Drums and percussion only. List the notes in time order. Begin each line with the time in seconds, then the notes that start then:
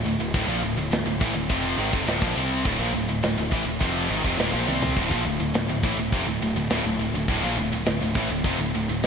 0.34 kick, crash
0.92 snare, crash
1.21 kick
1.50 kick, crash
1.93 kick
2.08 snare, crash
2.22 kick
2.65 kick, crash
3.23 snare, crash
3.52 kick
3.81 kick, crash
4.24 kick
4.39 snare, crash
4.68 high tom
4.82 floor tom
4.97 kick, crash
5.11 kick
5.54 snare, crash
5.83 kick
6.12 kick, crash
6.70 snare, crash
7.28 kick, crash
7.86 snare, crash
8.15 kick
8.44 kick, crash
9.03 snare, crash